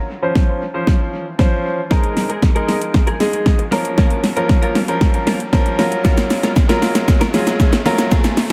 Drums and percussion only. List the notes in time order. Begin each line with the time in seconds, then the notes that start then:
0.35 kick, snare
0.87 kick, snare
1.39 kick, snare
1.91 kick, snare
2.04 closed hi-hat
2.17 snare, open hi-hat
2.30 closed hi-hat
2.42 kick, snare
2.56 closed hi-hat
2.68 snare, open hi-hat
2.82 closed hi-hat
2.94 kick, snare
3.07 closed hi-hat
3.20 snare, open hi-hat
3.33 closed hi-hat
3.46 kick, snare
3.59 closed hi-hat
3.72 snare, open hi-hat
3.85 closed hi-hat
3.98 kick, snare
4.10 closed hi-hat
4.24 snare, open hi-hat
4.37 closed hi-hat
4.49 kick, snare
4.63 closed hi-hat
4.75 snare, open hi-hat
4.88 closed hi-hat
5.01 kick, snare
5.14 closed hi-hat
5.27 snare, open hi-hat
5.40 closed hi-hat
5.53 kick, snare
5.66 closed hi-hat
5.79 snare, open hi-hat
5.92 closed hi-hat
6.05 kick, snare, shaker
6.17 snare, closed hi-hat, shaker
6.30 snare, open hi-hat, shaker
6.43 snare, closed hi-hat, shaker
6.56 kick, snare, shaker
6.69 snare, closed hi-hat, shaker
6.82 snare, open hi-hat, shaker
6.95 snare, closed hi-hat, shaker
7.08 kick, snare, shaker
7.21 snare, closed hi-hat, shaker
7.34 snare, open hi-hat, shaker
7.47 snare, closed hi-hat, shaker
7.60 kick, snare, shaker
7.73 snare, closed hi-hat, shaker
7.86 snare, open hi-hat, shaker
7.98 snare, closed hi-hat, shaker
8.11 kick, snare, shaker
8.24 snare, closed hi-hat, shaker
8.37 snare, open hi-hat, shaker